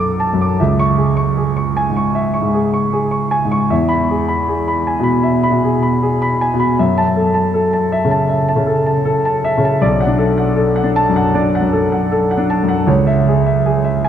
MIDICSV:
0, 0, Header, 1, 2, 480
1, 0, Start_track
1, 0, Key_signature, 3, "minor"
1, 0, Tempo, 778210
1, 360, Time_signature, 4, 2, 24, 8
1, 3238, Tempo, 761421
1, 7558, Tempo, 778210
1, 8782, End_track
2, 0, Start_track
2, 0, Title_t, "Grand piano"
2, 0, Program_c, 0, 0
2, 0, Control_c, 0, 64, 127
2, 0, Note_on_c, 0, 42, 37
2, 0, Note_on_c, 0, 69, 43
2, 0, Note_on_c, 0, 78, 38
2, 0, Note_on_c, 0, 81, 37
2, 0, Note_on_c, 0, 86, 38
2, 68, Note_off_c, 0, 69, 0
2, 122, Note_off_c, 0, 81, 0
2, 122, Note_on_c, 0, 81, 46
2, 191, Note_off_c, 0, 86, 0
2, 206, Note_off_c, 0, 42, 0
2, 206, Note_on_c, 0, 42, 39
2, 256, Note_on_c, 0, 86, 39
2, 314, Note_off_c, 0, 81, 0
2, 364, Note_off_c, 0, 42, 0
2, 368, Note_off_c, 0, 86, 0
2, 370, Note_on_c, 0, 76, 41
2, 371, Control_c, 0, 64, 0
2, 374, Note_on_c, 0, 37, 45
2, 376, Note_off_c, 0, 78, 0
2, 480, Control_c, 0, 64, 127
2, 490, Note_on_c, 0, 85, 51
2, 559, Note_off_c, 0, 76, 0
2, 601, Note_on_c, 0, 68, 35
2, 680, Note_off_c, 0, 85, 0
2, 720, Note_on_c, 0, 85, 44
2, 796, Note_off_c, 0, 68, 0
2, 844, Note_on_c, 0, 68, 36
2, 917, Note_off_c, 0, 85, 0
2, 966, Note_on_c, 0, 85, 38
2, 1040, Note_off_c, 0, 68, 0
2, 1089, Note_on_c, 0, 80, 43
2, 1160, Note_off_c, 0, 85, 0
2, 1169, Note_on_c, 0, 44, 32
2, 1212, Note_on_c, 0, 85, 38
2, 1281, Note_off_c, 0, 80, 0
2, 1311, Note_off_c, 0, 37, 0
2, 1326, Note_on_c, 0, 76, 43
2, 1402, Note_off_c, 0, 85, 0
2, 1424, Note_off_c, 0, 44, 0
2, 1442, Note_on_c, 0, 85, 38
2, 1489, Note_on_c, 0, 44, 38
2, 1518, Note_off_c, 0, 76, 0
2, 1566, Note_on_c, 0, 68, 38
2, 1636, Note_off_c, 0, 85, 0
2, 1688, Note_on_c, 0, 85, 39
2, 1743, Note_off_c, 0, 44, 0
2, 1758, Note_off_c, 0, 68, 0
2, 1805, Note_on_c, 0, 68, 44
2, 1878, Note_off_c, 0, 85, 0
2, 1920, Note_on_c, 0, 85, 38
2, 1997, Note_off_c, 0, 68, 0
2, 2042, Note_on_c, 0, 80, 47
2, 2114, Note_off_c, 0, 85, 0
2, 2127, Note_on_c, 0, 44, 37
2, 2169, Note_on_c, 0, 85, 43
2, 2234, Note_off_c, 0, 80, 0
2, 2284, Note_on_c, 0, 40, 48
2, 2284, Note_on_c, 0, 76, 38
2, 2285, Note_off_c, 0, 44, 0
2, 2286, Note_off_c, 0, 85, 0
2, 2295, Control_c, 0, 64, 0
2, 2393, Control_c, 0, 64, 127
2, 2397, Note_on_c, 0, 83, 50
2, 2475, Note_off_c, 0, 76, 0
2, 2530, Note_on_c, 0, 68, 39
2, 2591, Note_off_c, 0, 83, 0
2, 2643, Note_on_c, 0, 83, 39
2, 2718, Note_off_c, 0, 68, 0
2, 2765, Note_on_c, 0, 68, 40
2, 2834, Note_off_c, 0, 83, 0
2, 2885, Note_on_c, 0, 83, 41
2, 2955, Note_off_c, 0, 68, 0
2, 3004, Note_on_c, 0, 80, 40
2, 3074, Note_off_c, 0, 83, 0
2, 3082, Note_on_c, 0, 47, 42
2, 3105, Note_on_c, 0, 83, 44
2, 3193, Note_off_c, 0, 80, 0
2, 3214, Note_off_c, 0, 40, 0
2, 3228, Note_on_c, 0, 76, 42
2, 3304, Note_off_c, 0, 83, 0
2, 3337, Note_off_c, 0, 47, 0
2, 3355, Note_on_c, 0, 83, 43
2, 3401, Note_on_c, 0, 47, 43
2, 3427, Note_off_c, 0, 76, 0
2, 3484, Note_on_c, 0, 68, 42
2, 3551, Note_off_c, 0, 83, 0
2, 3601, Note_on_c, 0, 83, 43
2, 3658, Note_off_c, 0, 47, 0
2, 3676, Note_off_c, 0, 68, 0
2, 3727, Note_on_c, 0, 68, 45
2, 3795, Note_off_c, 0, 83, 0
2, 3849, Note_on_c, 0, 83, 46
2, 3918, Note_off_c, 0, 68, 0
2, 3971, Note_on_c, 0, 80, 50
2, 4039, Note_off_c, 0, 83, 0
2, 4050, Note_on_c, 0, 47, 43
2, 4087, Note_on_c, 0, 83, 43
2, 4160, Note_off_c, 0, 80, 0
2, 4205, Note_off_c, 0, 83, 0
2, 4207, Note_off_c, 0, 47, 0
2, 4211, Note_on_c, 0, 42, 45
2, 4211, Note_on_c, 0, 76, 42
2, 4213, Control_c, 0, 64, 0
2, 4327, Note_on_c, 0, 81, 56
2, 4328, Control_c, 0, 64, 127
2, 4399, Note_off_c, 0, 76, 0
2, 4443, Note_on_c, 0, 69, 37
2, 4517, Note_off_c, 0, 81, 0
2, 4556, Note_on_c, 0, 81, 43
2, 4636, Note_off_c, 0, 69, 0
2, 4680, Note_on_c, 0, 69, 43
2, 4754, Note_off_c, 0, 81, 0
2, 4803, Note_on_c, 0, 81, 47
2, 4876, Note_off_c, 0, 69, 0
2, 4923, Note_on_c, 0, 76, 50
2, 4998, Note_off_c, 0, 81, 0
2, 5000, Note_on_c, 0, 49, 40
2, 5041, Note_on_c, 0, 81, 46
2, 5117, Note_off_c, 0, 76, 0
2, 5145, Note_off_c, 0, 42, 0
2, 5157, Note_on_c, 0, 76, 42
2, 5236, Note_off_c, 0, 81, 0
2, 5259, Note_off_c, 0, 49, 0
2, 5278, Note_on_c, 0, 81, 46
2, 5325, Note_on_c, 0, 49, 40
2, 5353, Note_off_c, 0, 76, 0
2, 5392, Note_on_c, 0, 69, 42
2, 5473, Note_off_c, 0, 81, 0
2, 5516, Note_on_c, 0, 81, 41
2, 5580, Note_off_c, 0, 49, 0
2, 5589, Note_off_c, 0, 69, 0
2, 5636, Note_on_c, 0, 69, 48
2, 5711, Note_off_c, 0, 81, 0
2, 5761, Note_on_c, 0, 81, 47
2, 5831, Note_off_c, 0, 69, 0
2, 5883, Note_on_c, 0, 76, 55
2, 5954, Note_off_c, 0, 81, 0
2, 5965, Note_on_c, 0, 49, 46
2, 6012, Note_on_c, 0, 81, 44
2, 6074, Note_off_c, 0, 76, 0
2, 6114, Note_on_c, 0, 35, 52
2, 6117, Note_on_c, 0, 74, 50
2, 6123, Note_off_c, 0, 49, 0
2, 6126, Note_off_c, 0, 81, 0
2, 6134, Control_c, 0, 64, 0
2, 6228, Control_c, 0, 64, 127
2, 6236, Note_on_c, 0, 78, 46
2, 6274, Note_on_c, 0, 62, 39
2, 6310, Note_off_c, 0, 74, 0
2, 6348, Note_on_c, 0, 69, 44
2, 6429, Note_off_c, 0, 78, 0
2, 6471, Note_on_c, 0, 78, 44
2, 6532, Note_off_c, 0, 62, 0
2, 6546, Note_off_c, 0, 69, 0
2, 6586, Note_on_c, 0, 69, 45
2, 6669, Note_off_c, 0, 78, 0
2, 6710, Note_on_c, 0, 78, 46
2, 6760, Note_on_c, 0, 62, 45
2, 6788, Note_off_c, 0, 69, 0
2, 6838, Note_on_c, 0, 81, 64
2, 6911, Note_off_c, 0, 78, 0
2, 6922, Note_on_c, 0, 42, 43
2, 6964, Note_on_c, 0, 78, 49
2, 7021, Note_off_c, 0, 62, 0
2, 7035, Note_off_c, 0, 81, 0
2, 7057, Note_off_c, 0, 35, 0
2, 7083, Note_on_c, 0, 62, 44
2, 7083, Note_on_c, 0, 74, 50
2, 7156, Note_off_c, 0, 78, 0
2, 7179, Note_off_c, 0, 42, 0
2, 7210, Note_on_c, 0, 78, 44
2, 7247, Note_on_c, 0, 42, 44
2, 7274, Note_off_c, 0, 74, 0
2, 7320, Note_on_c, 0, 69, 43
2, 7336, Note_off_c, 0, 62, 0
2, 7395, Note_off_c, 0, 78, 0
2, 7444, Note_on_c, 0, 78, 41
2, 7497, Note_off_c, 0, 42, 0
2, 7510, Note_off_c, 0, 69, 0
2, 7566, Note_on_c, 0, 69, 50
2, 7631, Note_off_c, 0, 78, 0
2, 7686, Note_on_c, 0, 78, 44
2, 7727, Note_on_c, 0, 62, 47
2, 7752, Note_off_c, 0, 69, 0
2, 7803, Note_on_c, 0, 81, 51
2, 7873, Note_off_c, 0, 78, 0
2, 7886, Note_on_c, 0, 42, 44
2, 7918, Note_on_c, 0, 78, 45
2, 7978, Note_off_c, 0, 62, 0
2, 7993, Note_off_c, 0, 81, 0
2, 8029, Note_on_c, 0, 37, 48
2, 8032, Note_on_c, 0, 73, 46
2, 8038, Note_off_c, 0, 78, 0
2, 8042, Note_off_c, 0, 42, 0
2, 8048, Control_c, 0, 64, 0
2, 8145, Control_c, 0, 64, 127
2, 8155, Note_on_c, 0, 76, 42
2, 8229, Note_off_c, 0, 73, 0
2, 8283, Note_on_c, 0, 68, 39
2, 8351, Note_off_c, 0, 76, 0
2, 8398, Note_on_c, 0, 76, 46
2, 8474, Note_off_c, 0, 68, 0
2, 8516, Note_on_c, 0, 68, 40
2, 8590, Note_off_c, 0, 76, 0
2, 8633, Note_on_c, 0, 76, 44
2, 8709, Note_off_c, 0, 68, 0
2, 8756, Note_on_c, 0, 80, 56
2, 8782, Note_off_c, 0, 37, 0
2, 8782, Note_off_c, 0, 76, 0
2, 8782, Note_off_c, 0, 80, 0
2, 8782, End_track
0, 0, End_of_file